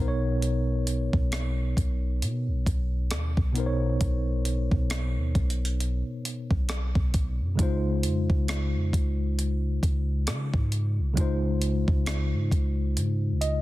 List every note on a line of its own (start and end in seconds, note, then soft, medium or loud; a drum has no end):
0.00 1.09 B1 loud
0.00 3.50 B2 medium
0.00 3.51 B3 medium
0.00 3.52 D#4 medium
0.00 3.53 A#4 medium
0.00 0.07 C5 medium
0.08 3.57 C#5 medium
0.42 closed hi-hat medium
0.87 closed hi-hat medium
1.13 1.74 B1 medium
1.13 kick medium
1.32 cross-stick loud
1.32 closed hi-hat medium
1.77 2.23 B1 medium
1.77 kick medium
1.77 closed hi-hat medium
2.22 2.49 B2 medium
2.22 closed hi-hat medium
2.48 2.66 B1 loud
2.66 3.12 B1 loud
2.66 kick medium
2.66 closed hi-hat medium
3.11 3.36 D#2 loud
3.11 cross-stick loud
3.11 closed hi-hat medium
3.37 3.98 B1 loud
3.37 kick loud
3.53 7.08 B2 medium
3.53 7.09 B3 medium
3.53 7.10 D#4 medium
3.53 closed hi-hat medium
3.58 7.11 A#4 medium
3.58 3.65 C5 medium
3.66 7.15 C#5 medium
4.01 4.69 B1 loud
4.01 kick loud
4.01 closed hi-hat medium
4.45 closed hi-hat medium
4.71 5.18 B1 loud
4.71 kick medium
4.90 cross-stick loud
4.90 closed hi-hat medium
5.16 5.34 D#2 loud
5.35 6.03 B1 loud
5.35 kick medium
5.35 closed hi-hat soft
5.50 closed hi-hat medium
5.65 closed hi-hat medium
5.80 closed hi-hat medium
6.25 closed hi-hat medium
6.51 6.94 B1 loud
6.51 kick medium
6.69 cross-stick loud
6.69 closed hi-hat medium
6.95 7.42 B1 loud
6.95 kick loud
7.14 kick loud
7.14 closed hi-hat medium
7.40 7.58 F#2 medium
7.55 8.05 C#2 loud
7.55 11.11 C#3 medium
7.55 11.12 G#3 medium
7.55 11.13 D#4 medium
7.55 kick loud
7.55 closed hi-hat medium
7.61 11.14 F4 medium
7.61 11.15 C5 medium
8.03 8.29 F2 medium
8.03 closed hi-hat medium
8.30 8.76 C#2 loud
8.30 kick medium
8.48 cross-stick loud
8.48 closed hi-hat medium
8.74 8.92 F2 loud
8.93 9.79 C#2 medium
8.93 kick medium
8.93 closed hi-hat medium
9.39 closed hi-hat medium
9.83 10.29 C#2 loud
9.83 kick medium
9.83 closed hi-hat medium
10.27 10.52 C#3 loud
10.27 cross-stick loud
10.27 closed hi-hat medium
10.54 11.00 G#2 loud
10.54 kick loud
10.72 closed hi-hat medium
10.99 11.16 C2 medium
11.14 11.85 C#2 loud
11.14 13.62 C#3 medium
11.14 13.62 G#3 medium
11.14 13.62 D#4 medium
11.14 kick loud
11.14 closed hi-hat medium
11.19 13.62 F4 medium
11.19 13.62 C5 medium
11.62 closed hi-hat medium
11.88 12.34 C#2 loud
11.88 kick medium
12.06 cross-stick loud
12.06 closed hi-hat medium
12.33 12.51 G#2 loud
12.51 12.98 C#2 medium
12.51 kick medium
12.51 closed hi-hat medium
12.96 13.33 G#2 medium
12.96 closed hi-hat medium
13.32 13.62 C#2 medium
13.41 13.62 D#5 medium
13.41 closed hi-hat medium